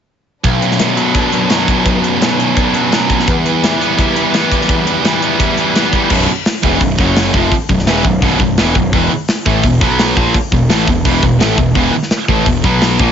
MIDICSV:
0, 0, Header, 1, 8, 480
1, 0, Start_track
1, 0, Key_signature, 2, "minor"
1, 0, Tempo, 353565
1, 604, Time_signature, 4, 2, 24, 8
1, 17809, End_track
2, 0, Start_track
2, 0, Title_t, "String section"
2, 0, Program_c, 0, 48
2, 606, Note_on_c, 0, 54, 69
2, 607, Note_on_c, 0, 71, 77
2, 616, Note_on_c, 0, 62, 62
2, 4414, Note_off_c, 0, 54, 0
2, 4419, Note_off_c, 0, 62, 0
2, 4462, Note_on_c, 0, 64, 69
2, 4467, Note_on_c, 0, 55, 78
2, 8241, Note_off_c, 0, 71, 0
2, 8261, Note_off_c, 0, 64, 0
2, 8263, Note_off_c, 0, 55, 0
2, 17809, End_track
3, 0, Start_track
3, 0, Title_t, "Distorted electric guitar"
3, 0, Program_c, 1, 30
3, 1077, Note_on_c, 1, 42, 61
3, 1316, Note_on_c, 1, 47, 63
3, 1549, Note_on_c, 1, 62, 69
3, 1796, Note_on_c, 1, 54, 63
3, 2022, Note_off_c, 1, 42, 0
3, 2038, Note_on_c, 1, 42, 65
3, 2255, Note_off_c, 1, 47, 0
3, 2760, Note_off_c, 1, 62, 0
3, 2972, Note_off_c, 1, 42, 0
3, 2988, Note_on_c, 1, 42, 63
3, 3004, Note_off_c, 1, 54, 0
3, 3237, Note_on_c, 1, 47, 64
3, 3459, Note_on_c, 1, 62, 68
3, 3705, Note_on_c, 1, 54, 63
3, 3940, Note_off_c, 1, 42, 0
3, 3956, Note_on_c, 1, 42, 65
3, 4191, Note_off_c, 1, 47, 0
3, 4436, Note_off_c, 1, 62, 0
3, 4439, Note_off_c, 1, 54, 0
3, 4444, Note_off_c, 1, 42, 0
3, 4931, Note_on_c, 1, 52, 67
3, 5164, Note_on_c, 1, 55, 65
3, 5402, Note_on_c, 1, 64, 71
3, 5650, Note_on_c, 1, 59, 61
3, 5873, Note_off_c, 1, 52, 0
3, 5889, Note_on_c, 1, 52, 67
3, 6115, Note_off_c, 1, 55, 0
3, 6608, Note_off_c, 1, 64, 0
3, 6834, Note_off_c, 1, 52, 0
3, 6850, Note_on_c, 1, 52, 63
3, 6852, Note_off_c, 1, 59, 0
3, 7084, Note_on_c, 1, 55, 60
3, 7327, Note_on_c, 1, 64, 67
3, 7574, Note_on_c, 1, 59, 61
3, 7786, Note_off_c, 1, 52, 0
3, 7802, Note_on_c, 1, 52, 63
3, 8031, Note_off_c, 1, 55, 0
3, 8288, Note_off_c, 1, 52, 0
3, 8290, Note_off_c, 1, 64, 0
3, 8294, Note_off_c, 1, 59, 0
3, 17809, End_track
4, 0, Start_track
4, 0, Title_t, "Distorted electric guitar"
4, 0, Program_c, 2, 30
4, 601, Note_on_c, 2, 35, 66
4, 833, Note_on_c, 2, 42, 55
4, 1073, Note_on_c, 2, 47, 60
4, 1306, Note_on_c, 2, 54, 62
4, 1534, Note_off_c, 2, 47, 0
4, 1551, Note_on_c, 2, 47, 62
4, 1763, Note_off_c, 2, 42, 0
4, 1779, Note_on_c, 2, 42, 60
4, 1805, Note_off_c, 2, 35, 0
4, 2024, Note_off_c, 2, 54, 0
4, 2040, Note_on_c, 2, 54, 64
4, 2266, Note_off_c, 2, 47, 0
4, 2282, Note_on_c, 2, 47, 58
4, 2533, Note_on_c, 2, 35, 69
4, 2743, Note_off_c, 2, 42, 0
4, 2759, Note_on_c, 2, 42, 57
4, 2993, Note_off_c, 2, 47, 0
4, 3009, Note_on_c, 2, 47, 59
4, 3225, Note_off_c, 2, 54, 0
4, 3241, Note_on_c, 2, 54, 64
4, 3476, Note_off_c, 2, 47, 0
4, 3492, Note_on_c, 2, 47, 65
4, 3707, Note_off_c, 2, 42, 0
4, 3723, Note_on_c, 2, 42, 62
4, 3733, Note_off_c, 2, 35, 0
4, 3958, Note_off_c, 2, 54, 0
4, 3975, Note_on_c, 2, 54, 66
4, 4202, Note_off_c, 2, 47, 0
4, 4218, Note_on_c, 2, 47, 56
4, 4447, Note_on_c, 2, 40, 66
4, 4448, Note_off_c, 2, 42, 0
4, 4453, Note_off_c, 2, 54, 0
4, 4455, Note_off_c, 2, 47, 0
4, 4682, Note_on_c, 2, 52, 62
4, 4925, Note_on_c, 2, 55, 65
4, 5163, Note_on_c, 2, 59, 66
4, 5390, Note_off_c, 2, 55, 0
4, 5406, Note_on_c, 2, 55, 70
4, 5640, Note_off_c, 2, 52, 0
4, 5650, Note_off_c, 2, 40, 0
4, 5656, Note_on_c, 2, 52, 65
4, 5877, Note_off_c, 2, 59, 0
4, 5883, Note_on_c, 2, 59, 66
4, 6117, Note_off_c, 2, 55, 0
4, 6134, Note_on_c, 2, 55, 58
4, 6379, Note_on_c, 2, 40, 64
4, 6590, Note_off_c, 2, 52, 0
4, 6607, Note_on_c, 2, 52, 58
4, 6829, Note_off_c, 2, 55, 0
4, 6845, Note_on_c, 2, 55, 61
4, 7066, Note_off_c, 2, 59, 0
4, 7082, Note_on_c, 2, 59, 61
4, 7292, Note_off_c, 2, 55, 0
4, 7309, Note_on_c, 2, 55, 67
4, 7555, Note_off_c, 2, 52, 0
4, 7571, Note_on_c, 2, 52, 63
4, 7577, Note_off_c, 2, 40, 0
4, 7798, Note_off_c, 2, 59, 0
4, 7815, Note_on_c, 2, 59, 64
4, 8038, Note_off_c, 2, 55, 0
4, 8054, Note_on_c, 2, 55, 59
4, 8282, Note_on_c, 2, 35, 85
4, 8292, Note_off_c, 2, 52, 0
4, 8294, Note_off_c, 2, 55, 0
4, 8294, Note_off_c, 2, 59, 0
4, 8296, Note_on_c, 2, 42, 94
4, 8306, Note_on_c, 2, 47, 89
4, 8513, Note_off_c, 2, 35, 0
4, 8527, Note_off_c, 2, 42, 0
4, 8533, Note_off_c, 2, 47, 0
4, 8994, Note_on_c, 2, 40, 87
4, 9008, Note_on_c, 2, 47, 97
4, 9016, Note_on_c, 2, 52, 92
4, 9236, Note_off_c, 2, 40, 0
4, 9243, Note_off_c, 2, 47, 0
4, 9247, Note_off_c, 2, 52, 0
4, 9250, Note_on_c, 2, 35, 59
4, 9254, Note_on_c, 2, 42, 66
4, 9443, Note_off_c, 2, 35, 0
4, 9446, Note_off_c, 2, 42, 0
4, 9469, Note_on_c, 2, 42, 88
4, 9478, Note_on_c, 2, 49, 94
4, 9493, Note_on_c, 2, 54, 101
4, 9953, Note_off_c, 2, 42, 0
4, 9958, Note_off_c, 2, 49, 0
4, 9965, Note_off_c, 2, 54, 0
4, 9966, Note_on_c, 2, 41, 81
4, 9975, Note_on_c, 2, 48, 87
4, 9984, Note_on_c, 2, 53, 95
4, 10202, Note_off_c, 2, 41, 0
4, 10206, Note_off_c, 2, 48, 0
4, 10211, Note_off_c, 2, 53, 0
4, 10454, Note_on_c, 2, 35, 58
4, 10456, Note_on_c, 2, 42, 68
4, 10645, Note_off_c, 2, 35, 0
4, 10645, Note_off_c, 2, 42, 0
4, 10687, Note_on_c, 2, 40, 89
4, 10695, Note_on_c, 2, 47, 85
4, 10705, Note_on_c, 2, 52, 92
4, 10921, Note_off_c, 2, 40, 0
4, 10926, Note_off_c, 2, 47, 0
4, 10928, Note_on_c, 2, 35, 62
4, 10930, Note_off_c, 2, 52, 0
4, 10937, Note_on_c, 2, 42, 70
4, 11121, Note_off_c, 2, 35, 0
4, 11126, Note_off_c, 2, 42, 0
4, 11170, Note_on_c, 2, 35, 91
4, 11181, Note_on_c, 2, 42, 91
4, 11191, Note_on_c, 2, 47, 98
4, 11399, Note_off_c, 2, 35, 0
4, 11408, Note_off_c, 2, 42, 0
4, 11413, Note_off_c, 2, 47, 0
4, 11415, Note_on_c, 2, 35, 60
4, 11424, Note_on_c, 2, 42, 65
4, 11604, Note_off_c, 2, 35, 0
4, 11609, Note_off_c, 2, 42, 0
4, 11645, Note_on_c, 2, 40, 96
4, 11655, Note_on_c, 2, 47, 92
4, 11666, Note_on_c, 2, 52, 101
4, 11880, Note_off_c, 2, 40, 0
4, 11885, Note_off_c, 2, 47, 0
4, 11891, Note_off_c, 2, 52, 0
4, 11892, Note_on_c, 2, 35, 60
4, 11901, Note_on_c, 2, 42, 69
4, 12083, Note_off_c, 2, 35, 0
4, 12087, Note_off_c, 2, 42, 0
4, 12128, Note_on_c, 2, 40, 97
4, 12134, Note_on_c, 2, 47, 89
4, 12143, Note_on_c, 2, 52, 90
4, 12356, Note_off_c, 2, 40, 0
4, 12364, Note_off_c, 2, 47, 0
4, 12369, Note_off_c, 2, 52, 0
4, 12840, Note_on_c, 2, 45, 92
4, 12853, Note_on_c, 2, 52, 103
4, 12862, Note_on_c, 2, 57, 98
4, 13077, Note_off_c, 2, 45, 0
4, 13083, Note_off_c, 2, 52, 0
4, 13088, Note_off_c, 2, 57, 0
4, 13092, Note_on_c, 2, 40, 61
4, 13093, Note_on_c, 2, 47, 74
4, 13282, Note_off_c, 2, 40, 0
4, 13282, Note_off_c, 2, 47, 0
4, 13317, Note_on_c, 2, 47, 88
4, 13332, Note_on_c, 2, 54, 102
4, 13337, Note_on_c, 2, 59, 99
4, 13795, Note_off_c, 2, 47, 0
4, 13800, Note_on_c, 2, 46, 75
4, 13803, Note_off_c, 2, 54, 0
4, 13804, Note_off_c, 2, 59, 0
4, 13812, Note_on_c, 2, 53, 87
4, 13817, Note_on_c, 2, 58, 91
4, 14037, Note_off_c, 2, 46, 0
4, 14042, Note_off_c, 2, 53, 0
4, 14045, Note_off_c, 2, 58, 0
4, 14293, Note_on_c, 2, 40, 57
4, 14303, Note_on_c, 2, 47, 67
4, 14482, Note_off_c, 2, 40, 0
4, 14487, Note_off_c, 2, 47, 0
4, 14520, Note_on_c, 2, 45, 92
4, 14533, Note_on_c, 2, 52, 90
4, 14543, Note_on_c, 2, 57, 100
4, 14756, Note_off_c, 2, 45, 0
4, 14763, Note_off_c, 2, 52, 0
4, 14768, Note_off_c, 2, 57, 0
4, 14768, Note_on_c, 2, 40, 67
4, 14775, Note_on_c, 2, 47, 69
4, 14959, Note_off_c, 2, 40, 0
4, 14963, Note_off_c, 2, 47, 0
4, 15002, Note_on_c, 2, 40, 86
4, 15013, Note_on_c, 2, 47, 91
4, 15021, Note_on_c, 2, 52, 98
4, 15231, Note_off_c, 2, 40, 0
4, 15242, Note_off_c, 2, 47, 0
4, 15247, Note_off_c, 2, 52, 0
4, 15247, Note_on_c, 2, 40, 66
4, 15257, Note_on_c, 2, 47, 72
4, 15439, Note_off_c, 2, 40, 0
4, 15444, Note_off_c, 2, 47, 0
4, 15482, Note_on_c, 2, 45, 89
4, 15489, Note_on_c, 2, 52, 90
4, 15493, Note_on_c, 2, 57, 95
4, 15717, Note_off_c, 2, 45, 0
4, 15720, Note_off_c, 2, 52, 0
4, 15722, Note_off_c, 2, 57, 0
4, 15727, Note_on_c, 2, 40, 60
4, 15734, Note_on_c, 2, 47, 66
4, 15918, Note_off_c, 2, 40, 0
4, 15922, Note_off_c, 2, 47, 0
4, 15961, Note_on_c, 2, 40, 94
4, 15976, Note_on_c, 2, 47, 96
4, 15980, Note_on_c, 2, 52, 90
4, 16176, Note_off_c, 2, 40, 0
4, 16204, Note_off_c, 2, 47, 0
4, 16206, Note_off_c, 2, 52, 0
4, 16683, Note_on_c, 2, 45, 86
4, 16686, Note_on_c, 2, 52, 105
4, 16695, Note_on_c, 2, 57, 105
4, 16917, Note_off_c, 2, 45, 0
4, 16919, Note_off_c, 2, 52, 0
4, 16923, Note_off_c, 2, 57, 0
4, 16923, Note_on_c, 2, 40, 66
4, 16935, Note_on_c, 2, 47, 67
4, 17116, Note_off_c, 2, 40, 0
4, 17122, Note_off_c, 2, 47, 0
4, 17162, Note_on_c, 2, 47, 91
4, 17170, Note_on_c, 2, 54, 98
4, 17176, Note_on_c, 2, 59, 94
4, 17636, Note_off_c, 2, 47, 0
4, 17641, Note_off_c, 2, 54, 0
4, 17641, Note_on_c, 2, 46, 87
4, 17644, Note_off_c, 2, 59, 0
4, 17651, Note_on_c, 2, 53, 83
4, 17666, Note_on_c, 2, 58, 82
4, 17809, Note_off_c, 2, 46, 0
4, 17809, Note_off_c, 2, 53, 0
4, 17809, Note_off_c, 2, 58, 0
4, 17809, End_track
5, 0, Start_track
5, 0, Title_t, "Picked electric bass"
5, 0, Program_c, 3, 34
5, 8288, Note_on_c, 3, 23, 90
5, 8514, Note_off_c, 3, 23, 0
5, 9007, Note_on_c, 3, 28, 86
5, 9233, Note_off_c, 3, 28, 0
5, 9245, Note_on_c, 3, 23, 84
5, 9472, Note_off_c, 3, 23, 0
5, 9483, Note_on_c, 3, 30, 93
5, 9934, Note_off_c, 3, 30, 0
5, 9967, Note_on_c, 3, 29, 94
5, 10192, Note_off_c, 3, 29, 0
5, 10450, Note_on_c, 3, 23, 80
5, 10673, Note_off_c, 3, 23, 0
5, 10696, Note_on_c, 3, 28, 90
5, 10916, Note_off_c, 3, 28, 0
5, 10927, Note_on_c, 3, 23, 73
5, 11151, Note_off_c, 3, 23, 0
5, 11169, Note_on_c, 3, 23, 94
5, 11393, Note_off_c, 3, 23, 0
5, 11406, Note_on_c, 3, 23, 79
5, 11631, Note_off_c, 3, 23, 0
5, 11658, Note_on_c, 3, 28, 91
5, 11877, Note_off_c, 3, 28, 0
5, 11889, Note_on_c, 3, 23, 81
5, 12112, Note_off_c, 3, 23, 0
5, 12126, Note_on_c, 3, 28, 89
5, 12350, Note_off_c, 3, 28, 0
5, 12844, Note_on_c, 3, 33, 92
5, 13069, Note_off_c, 3, 33, 0
5, 13087, Note_on_c, 3, 28, 82
5, 13310, Note_off_c, 3, 28, 0
5, 13325, Note_on_c, 3, 35, 97
5, 13772, Note_off_c, 3, 35, 0
5, 13808, Note_on_c, 3, 34, 89
5, 14031, Note_off_c, 3, 34, 0
5, 14282, Note_on_c, 3, 28, 82
5, 14508, Note_off_c, 3, 28, 0
5, 14529, Note_on_c, 3, 33, 93
5, 14751, Note_off_c, 3, 33, 0
5, 14767, Note_on_c, 3, 28, 74
5, 14990, Note_off_c, 3, 28, 0
5, 15006, Note_on_c, 3, 28, 93
5, 15229, Note_off_c, 3, 28, 0
5, 15248, Note_on_c, 3, 28, 79
5, 15470, Note_off_c, 3, 28, 0
5, 15485, Note_on_c, 3, 33, 85
5, 15709, Note_off_c, 3, 33, 0
5, 15724, Note_on_c, 3, 28, 74
5, 15948, Note_off_c, 3, 28, 0
5, 15960, Note_on_c, 3, 28, 94
5, 16186, Note_off_c, 3, 28, 0
5, 16679, Note_on_c, 3, 33, 89
5, 16905, Note_off_c, 3, 33, 0
5, 16921, Note_on_c, 3, 28, 84
5, 17146, Note_off_c, 3, 28, 0
5, 17163, Note_on_c, 3, 35, 89
5, 17610, Note_off_c, 3, 35, 0
5, 17642, Note_on_c, 3, 34, 93
5, 17809, Note_off_c, 3, 34, 0
5, 17809, End_track
6, 0, Start_track
6, 0, Title_t, "Muted distorted electric guitar strokes"
6, 8529, Note_on_c, 9, 29, 52
6, 8665, Note_off_c, 9, 29, 0
6, 10221, Note_on_c, 9, 29, 55
6, 10357, Note_off_c, 9, 29, 0
6, 12372, Note_on_c, 9, 29, 54
6, 12508, Note_off_c, 9, 29, 0
6, 14053, Note_on_c, 9, 29, 55
6, 14189, Note_off_c, 9, 29, 0
6, 16193, Note_on_c, 9, 29, 54
6, 16328, Note_off_c, 9, 29, 0
6, 17809, End_track
7, 0, Start_track
7, 0, Title_t, "Muted picked electric bass strokes"
7, 8542, Note_on_c, 9, 29, 39
7, 8678, Note_off_c, 9, 29, 0
7, 10209, Note_on_c, 9, 29, 39
7, 10345, Note_off_c, 9, 29, 0
7, 12368, Note_on_c, 9, 29, 41
7, 12504, Note_off_c, 9, 29, 0
7, 14048, Note_on_c, 9, 29, 41
7, 14184, Note_off_c, 9, 29, 0
7, 16199, Note_on_c, 9, 29, 41
7, 16334, Note_off_c, 9, 29, 0
7, 17809, End_track
8, 0, Start_track
8, 0, Title_t, "Drums"
8, 599, Note_on_c, 9, 36, 96
8, 599, Note_on_c, 9, 42, 73
8, 734, Note_off_c, 9, 36, 0
8, 734, Note_off_c, 9, 42, 0
8, 843, Note_on_c, 9, 42, 57
8, 968, Note_on_c, 9, 38, 29
8, 979, Note_off_c, 9, 42, 0
8, 1078, Note_on_c, 9, 42, 84
8, 1086, Note_off_c, 9, 38, 0
8, 1086, Note_on_c, 9, 38, 106
8, 1214, Note_off_c, 9, 42, 0
8, 1222, Note_off_c, 9, 38, 0
8, 1319, Note_on_c, 9, 42, 59
8, 1455, Note_off_c, 9, 42, 0
8, 1556, Note_on_c, 9, 42, 75
8, 1558, Note_on_c, 9, 36, 101
8, 1691, Note_off_c, 9, 42, 0
8, 1693, Note_off_c, 9, 36, 0
8, 1795, Note_on_c, 9, 42, 59
8, 1930, Note_off_c, 9, 42, 0
8, 2035, Note_on_c, 9, 42, 77
8, 2043, Note_on_c, 9, 38, 101
8, 2171, Note_off_c, 9, 42, 0
8, 2179, Note_off_c, 9, 38, 0
8, 2281, Note_on_c, 9, 36, 76
8, 2288, Note_on_c, 9, 42, 58
8, 2417, Note_off_c, 9, 36, 0
8, 2424, Note_off_c, 9, 42, 0
8, 2520, Note_on_c, 9, 36, 94
8, 2520, Note_on_c, 9, 42, 75
8, 2656, Note_off_c, 9, 36, 0
8, 2656, Note_off_c, 9, 42, 0
8, 2768, Note_on_c, 9, 42, 57
8, 2904, Note_off_c, 9, 42, 0
8, 3010, Note_on_c, 9, 42, 80
8, 3018, Note_on_c, 9, 38, 107
8, 3146, Note_off_c, 9, 42, 0
8, 3154, Note_off_c, 9, 38, 0
8, 3254, Note_on_c, 9, 42, 53
8, 3389, Note_off_c, 9, 42, 0
8, 3486, Note_on_c, 9, 36, 97
8, 3486, Note_on_c, 9, 42, 72
8, 3621, Note_off_c, 9, 42, 0
8, 3622, Note_off_c, 9, 36, 0
8, 3721, Note_on_c, 9, 42, 52
8, 3857, Note_off_c, 9, 42, 0
8, 3967, Note_on_c, 9, 42, 73
8, 3976, Note_on_c, 9, 38, 102
8, 4103, Note_off_c, 9, 42, 0
8, 4111, Note_off_c, 9, 38, 0
8, 4206, Note_on_c, 9, 36, 71
8, 4206, Note_on_c, 9, 42, 55
8, 4339, Note_on_c, 9, 38, 30
8, 4341, Note_off_c, 9, 42, 0
8, 4342, Note_off_c, 9, 36, 0
8, 4450, Note_on_c, 9, 36, 101
8, 4452, Note_on_c, 9, 42, 75
8, 4474, Note_off_c, 9, 38, 0
8, 4586, Note_off_c, 9, 36, 0
8, 4588, Note_off_c, 9, 42, 0
8, 4692, Note_on_c, 9, 42, 59
8, 4828, Note_off_c, 9, 42, 0
8, 4937, Note_on_c, 9, 42, 84
8, 4945, Note_on_c, 9, 38, 107
8, 5072, Note_off_c, 9, 42, 0
8, 5080, Note_off_c, 9, 38, 0
8, 5179, Note_on_c, 9, 42, 57
8, 5314, Note_off_c, 9, 42, 0
8, 5410, Note_on_c, 9, 36, 96
8, 5411, Note_on_c, 9, 42, 78
8, 5546, Note_off_c, 9, 36, 0
8, 5546, Note_off_c, 9, 42, 0
8, 5651, Note_on_c, 9, 42, 61
8, 5787, Note_off_c, 9, 42, 0
8, 5891, Note_on_c, 9, 42, 84
8, 5899, Note_on_c, 9, 38, 97
8, 6027, Note_off_c, 9, 42, 0
8, 6035, Note_off_c, 9, 38, 0
8, 6130, Note_on_c, 9, 36, 70
8, 6133, Note_on_c, 9, 42, 63
8, 6262, Note_on_c, 9, 38, 30
8, 6266, Note_off_c, 9, 36, 0
8, 6268, Note_off_c, 9, 42, 0
8, 6368, Note_on_c, 9, 42, 82
8, 6369, Note_on_c, 9, 36, 95
8, 6398, Note_off_c, 9, 38, 0
8, 6504, Note_off_c, 9, 42, 0
8, 6505, Note_off_c, 9, 36, 0
8, 6611, Note_on_c, 9, 42, 59
8, 6746, Note_off_c, 9, 42, 0
8, 6853, Note_on_c, 9, 42, 84
8, 6861, Note_on_c, 9, 38, 114
8, 6988, Note_off_c, 9, 42, 0
8, 6997, Note_off_c, 9, 38, 0
8, 7089, Note_on_c, 9, 42, 57
8, 7225, Note_off_c, 9, 42, 0
8, 7329, Note_on_c, 9, 36, 102
8, 7331, Note_on_c, 9, 42, 76
8, 7464, Note_off_c, 9, 36, 0
8, 7467, Note_off_c, 9, 42, 0
8, 7568, Note_on_c, 9, 42, 58
8, 7704, Note_off_c, 9, 42, 0
8, 7813, Note_on_c, 9, 42, 73
8, 7821, Note_on_c, 9, 38, 102
8, 7949, Note_off_c, 9, 42, 0
8, 7957, Note_off_c, 9, 38, 0
8, 8046, Note_on_c, 9, 42, 54
8, 8048, Note_on_c, 9, 36, 70
8, 8182, Note_off_c, 9, 42, 0
8, 8184, Note_off_c, 9, 36, 0
8, 8280, Note_on_c, 9, 49, 114
8, 8287, Note_on_c, 9, 36, 101
8, 8415, Note_off_c, 9, 49, 0
8, 8422, Note_off_c, 9, 36, 0
8, 8764, Note_on_c, 9, 46, 64
8, 8772, Note_on_c, 9, 38, 113
8, 8899, Note_off_c, 9, 46, 0
8, 8908, Note_off_c, 9, 38, 0
8, 9006, Note_on_c, 9, 36, 96
8, 9142, Note_off_c, 9, 36, 0
8, 9236, Note_on_c, 9, 46, 57
8, 9244, Note_on_c, 9, 36, 91
8, 9372, Note_off_c, 9, 46, 0
8, 9380, Note_off_c, 9, 36, 0
8, 9483, Note_on_c, 9, 36, 106
8, 9483, Note_on_c, 9, 38, 31
8, 9618, Note_off_c, 9, 38, 0
8, 9619, Note_off_c, 9, 36, 0
8, 9721, Note_on_c, 9, 46, 56
8, 9729, Note_on_c, 9, 38, 105
8, 9857, Note_off_c, 9, 46, 0
8, 9865, Note_off_c, 9, 38, 0
8, 9964, Note_on_c, 9, 36, 105
8, 10100, Note_off_c, 9, 36, 0
8, 10199, Note_on_c, 9, 46, 61
8, 10204, Note_on_c, 9, 36, 103
8, 10335, Note_off_c, 9, 46, 0
8, 10340, Note_off_c, 9, 36, 0
8, 10444, Note_on_c, 9, 36, 92
8, 10574, Note_on_c, 9, 38, 33
8, 10580, Note_off_c, 9, 36, 0
8, 10680, Note_on_c, 9, 46, 62
8, 10689, Note_off_c, 9, 38, 0
8, 10689, Note_on_c, 9, 38, 115
8, 10816, Note_off_c, 9, 46, 0
8, 10824, Note_off_c, 9, 38, 0
8, 10923, Note_on_c, 9, 36, 88
8, 11059, Note_off_c, 9, 36, 0
8, 11162, Note_on_c, 9, 36, 99
8, 11167, Note_on_c, 9, 46, 55
8, 11298, Note_off_c, 9, 36, 0
8, 11302, Note_off_c, 9, 46, 0
8, 11401, Note_on_c, 9, 36, 89
8, 11537, Note_off_c, 9, 36, 0
8, 11639, Note_on_c, 9, 46, 53
8, 11647, Note_on_c, 9, 38, 114
8, 11775, Note_off_c, 9, 46, 0
8, 11783, Note_off_c, 9, 38, 0
8, 11883, Note_on_c, 9, 36, 88
8, 12018, Note_off_c, 9, 36, 0
8, 12124, Note_on_c, 9, 36, 100
8, 12128, Note_on_c, 9, 46, 54
8, 12259, Note_off_c, 9, 36, 0
8, 12263, Note_off_c, 9, 46, 0
8, 12600, Note_on_c, 9, 46, 60
8, 12608, Note_on_c, 9, 38, 118
8, 12736, Note_off_c, 9, 46, 0
8, 12744, Note_off_c, 9, 38, 0
8, 12842, Note_on_c, 9, 36, 103
8, 12978, Note_off_c, 9, 36, 0
8, 13076, Note_on_c, 9, 46, 61
8, 13081, Note_on_c, 9, 36, 90
8, 13211, Note_off_c, 9, 46, 0
8, 13217, Note_off_c, 9, 36, 0
8, 13323, Note_on_c, 9, 36, 101
8, 13333, Note_on_c, 9, 38, 32
8, 13458, Note_off_c, 9, 36, 0
8, 13468, Note_off_c, 9, 38, 0
8, 13560, Note_on_c, 9, 46, 64
8, 13568, Note_on_c, 9, 38, 114
8, 13696, Note_off_c, 9, 46, 0
8, 13704, Note_off_c, 9, 38, 0
8, 13804, Note_on_c, 9, 36, 105
8, 13940, Note_off_c, 9, 36, 0
8, 14039, Note_on_c, 9, 46, 60
8, 14043, Note_on_c, 9, 36, 102
8, 14175, Note_off_c, 9, 46, 0
8, 14179, Note_off_c, 9, 36, 0
8, 14283, Note_on_c, 9, 36, 92
8, 14419, Note_off_c, 9, 36, 0
8, 14521, Note_on_c, 9, 46, 67
8, 14529, Note_on_c, 9, 38, 121
8, 14657, Note_off_c, 9, 46, 0
8, 14665, Note_off_c, 9, 38, 0
8, 14764, Note_on_c, 9, 36, 89
8, 14900, Note_off_c, 9, 36, 0
8, 15004, Note_on_c, 9, 36, 103
8, 15004, Note_on_c, 9, 46, 56
8, 15139, Note_off_c, 9, 36, 0
8, 15140, Note_off_c, 9, 46, 0
8, 15243, Note_on_c, 9, 36, 91
8, 15379, Note_off_c, 9, 36, 0
8, 15481, Note_on_c, 9, 46, 56
8, 15489, Note_on_c, 9, 38, 106
8, 15617, Note_off_c, 9, 46, 0
8, 15625, Note_off_c, 9, 38, 0
8, 15720, Note_on_c, 9, 36, 95
8, 15856, Note_off_c, 9, 36, 0
8, 15955, Note_on_c, 9, 46, 56
8, 15957, Note_on_c, 9, 36, 100
8, 16091, Note_off_c, 9, 46, 0
8, 16093, Note_off_c, 9, 36, 0
8, 16326, Note_on_c, 9, 38, 33
8, 16433, Note_on_c, 9, 46, 59
8, 16441, Note_off_c, 9, 38, 0
8, 16441, Note_on_c, 9, 38, 117
8, 16568, Note_off_c, 9, 46, 0
8, 16576, Note_off_c, 9, 38, 0
8, 16677, Note_on_c, 9, 36, 102
8, 16813, Note_off_c, 9, 36, 0
8, 16919, Note_on_c, 9, 36, 90
8, 16920, Note_on_c, 9, 46, 56
8, 17054, Note_off_c, 9, 36, 0
8, 17056, Note_off_c, 9, 46, 0
8, 17160, Note_on_c, 9, 36, 100
8, 17172, Note_on_c, 9, 38, 31
8, 17296, Note_off_c, 9, 36, 0
8, 17308, Note_off_c, 9, 38, 0
8, 17394, Note_on_c, 9, 46, 59
8, 17403, Note_on_c, 9, 38, 107
8, 17530, Note_off_c, 9, 46, 0
8, 17538, Note_off_c, 9, 38, 0
8, 17642, Note_on_c, 9, 36, 107
8, 17778, Note_off_c, 9, 36, 0
8, 17809, End_track
0, 0, End_of_file